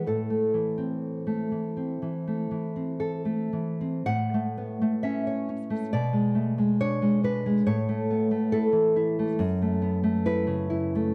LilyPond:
\new Staff \with { instrumentName = "Nylon-string guitar" } { \time 4/4 \key a \minor \tempo 4 = 68 << { a'2. a'4 | \key a \major fis''4 e''4 d''4 cis''8 b'8 | cis''4 a'4. r8 b'4 | } \\ { a,16 a16 e16 c'8 a16 e16 c'16 e16 a16 e16 c'8 a16 e16 c'16 | a,16 a16 b16 a16 cis'16 cis''16 cis'16 a16 b,16 gis16 a16 gis16 d'16 gis16 d'16 gis16 | a,16 a16 b16 a16 e'16 e16 e'16 a16 fis,16 a16 b16 a16 e'16 cis16 e'16 a16 | } >> }